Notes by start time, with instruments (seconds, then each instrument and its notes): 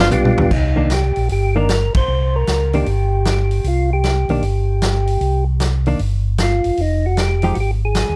Already playing: tonewheel organ G1
0.00 hollow-body jazz guitar F3 B3 D4, tenor saxophone F4
0.11 tonewheel organ B1 G3 B3 D4 F4 G4, hi-hat pedal, mid tom
0.25 mid tom
0.37 tonewheel organ B1, floor tom
0.51 tonewheel organ C2 D#4, kick, crash
0.76 hollow-body jazz guitar D#3 A#3 D4
0.90 tonewheel organ G4, snare, closed hi-hat
1.16 tonewheel organ A#1, open hi-hat
1.29 tonewheel organ G1 G4, open hi-hat
1.56 hollow-body jazz guitar D#3 A#3 D4, tonewheel organ A#4
1.69 snare, closed hi-hat
1.95 tonewheel organ G1 C5, kick, ride
2.08 tonewheel organ C2
2.36 tonewheel organ A#4
2.47 tonewheel organ C#2, snare, closed hi-hat
2.73 hollow-body jazz guitar D#3 A#3 D4, tonewheel organ G4, open hi-hat
2.86 tonewheel organ G1, open hi-hat
3.25 tonewheel organ G4, snare, closed hi-hat
3.51 open hi-hat
3.64 tonewheel organ C2 F4, open hi-hat
3.93 tonewheel organ G4
4.04 snare, closed hi-hat
4.28 tonewheel organ B1, hollow-body jazz guitar D#3 A#3 D4, open hi-hat
4.42 tonewheel organ G1, open hi-hat
4.82 snare, closed hi-hat
5.07 open hi-hat
5.21 tonewheel organ C2, open hi-hat
5.60 snare, closed hi-hat
5.86 hollow-body jazz guitar D#3 A#3 D4, open hi-hat
5.99 tonewheel organ G1, open hi-hat
6.38 tonewheel organ F4, snare, closed hi-hat
6.64 tonewheel organ G1, open hi-hat
6.77 tonewheel organ F1 D#4, open hi-hat
7.06 tonewheel organ F#4
7.17 tonewheel organ G4, snare, closed hi-hat
7.42 hollow-body jazz guitar F3 G#3 D#4 G4, open hi-hat
7.55 tonewheel organ G#1 F#4, open hi-hat
7.60 tonewheel organ G4
7.85 tonewheel organ G#4
7.95 snare, closed hi-hat
8.09 tonewheel organ D#2